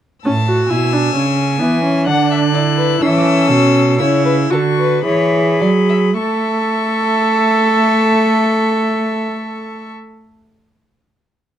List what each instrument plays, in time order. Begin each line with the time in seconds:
0.25 cello A2, viola C#4, violin A5 E6
0.48 viola F#4
0.70 cello B2, viola E4, violin G#5
0.93 viola D4
1.15 cello C#3, viola C#4
1.60 cello E3, viola B3
1.83 viola C#4
2.06 cello D3, viola D4, violin F#5 F#6
2.31 violin E5
2.54 viola E4, violin D5
2.77 violin B4
3.01 cello E3, viola C#4, violin A4 E6
3.50 cello B2
3.99 cello C#3, viola E4, violin C#5 E6
4.25 violin B4
4.50 cello D3, viola F#4, violin A4 C#6
4.79 violin B4
5.04 cello E3, viola G#4, violin C#5 B5
5.61 cello F#3, violin D5
5.89 violin E5
6.17 cello A3, viola A4, violin E5 C#6